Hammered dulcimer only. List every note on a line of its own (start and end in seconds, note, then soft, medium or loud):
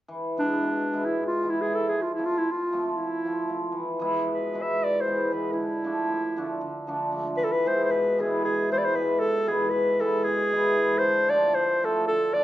0.08 0.36 E3 medium
0.37 0.65 E3 medium
0.37 0.92 G#3 medium
0.37 0.53 B3 medium
0.37 0.54 E4 medium
0.62 1.94 B2 medium
0.92 1.15 E3 medium
0.92 1.42 G#3 medium
0.92 1.08 B3 medium
0.92 1.09 E4 medium
1.16 1.42 E3 soft
1.43 1.64 E3 medium
1.43 1.64 G#3 soft
1.43 1.58 B3 soft
1.43 1.59 E4 medium
1.65 1.94 E3 soft
1.65 1.94 G#3 soft
1.65 1.81 B3 soft
1.65 1.81 E4 medium
1.89 2.17 F3 medium
2.18 2.46 F3 medium
2.18 2.35 A3 medium
2.18 2.35 C4 soft
2.18 2.35 F4 medium
2.43 3.76 C3 medium
2.72 2.96 F3 medium
2.72 2.89 A3 medium
2.72 2.89 C4 medium
2.72 2.89 F4 medium
2.98 3.24 F3 soft
3.25 3.46 F3 soft
3.25 3.40 A3 soft
3.25 3.40 C4 medium
3.25 3.41 F4 medium
3.48 3.76 F3 soft
3.48 3.63 A3 soft
3.48 3.63 C4 soft
3.48 3.64 F4 soft
3.72 3.98 E3 medium
3.99 4.28 E3 medium
3.99 4.53 G#3 medium
3.99 4.17 B3 medium
3.99 4.17 E4 medium
4.25 5.58 B2 medium
4.54 4.78 E3 medium
4.54 5.06 G#3 medium
4.54 4.71 B3 soft
4.54 4.71 E4 medium
4.79 5.06 E3 soft
5.07 5.30 E3 medium
5.07 5.31 G#3 soft
5.07 5.22 B3 soft
5.07 5.23 E4 medium
5.31 5.58 E3 soft
5.31 5.58 G#3 soft
5.31 5.46 B3 soft
5.31 5.46 E4 soft
5.53 5.83 D3 medium
5.84 6.10 D3 medium
5.84 6.36 F3 medium
5.84 5.99 A3 medium
5.84 6.00 D4 medium
6.07 6.36 A2 medium
6.36 6.60 D3 medium
6.36 6.62 F3 medium
6.36 6.53 A3 medium
6.36 6.53 D4 medium
6.61 6.86 D3 medium
6.87 7.10 D3 medium
6.87 7.11 F3 medium
6.87 7.03 A3 medium
6.87 7.03 D4 medium
7.11 7.40 D3 medium
7.11 7.40 F3 soft
7.11 7.27 A3 soft
7.11 7.27 D4 soft
7.35 7.64 E3 medium
7.65 7.92 E3 medium
7.65 8.18 G#3 medium
7.65 7.81 B3 medium
7.65 7.81 E4 medium
7.90 9.17 B2 medium
8.18 8.42 E3 medium
8.18 8.70 G#3 medium
8.18 8.35 B3 medium
8.18 8.35 E4 medium
8.44 8.69 E3 soft
8.70 8.92 E3 medium
8.70 8.93 G#3 medium
8.70 8.86 B3 medium
8.70 8.86 E4 medium
8.94 9.22 E3 soft
8.94 9.46 G#3 soft
8.94 9.09 B3 soft
8.94 9.09 E4 medium
9.18 10.24 B2 medium
9.46 9.70 E3 medium
9.46 9.99 G#3 medium
9.46 9.63 B3 medium
9.46 9.63 E4 medium
9.71 9.98 E3 medium
9.99 10.26 E3 medium
9.99 10.52 G#3 medium
9.99 10.16 B3 medium
9.99 10.17 E4 medium
10.25 11.04 B2 medium
10.52 10.74 E3 medium
10.52 10.75 G#3 medium
10.52 10.68 B3 medium
10.52 10.68 E4 medium
10.75 11.04 E3 soft
10.75 11.04 G#3 soft
10.75 10.91 B3 soft
10.75 10.91 E4 medium
10.99 11.56 D3 medium
11.28 11.82 F3 medium
11.28 11.44 A3 medium
11.28 11.45 D4 medium
11.28 11.45 F4 medium
11.53 12.08 A2 medium
11.83 12.08 F3 medium
11.83 11.99 A3 medium
11.83 11.99 D4 medium
11.83 11.99 F4 medium
12.07 12.44 D3 medium
12.34 12.44 F3 soft
12.34 12.44 A3 soft
12.34 12.44 D4 medium
12.34 12.44 F4 medium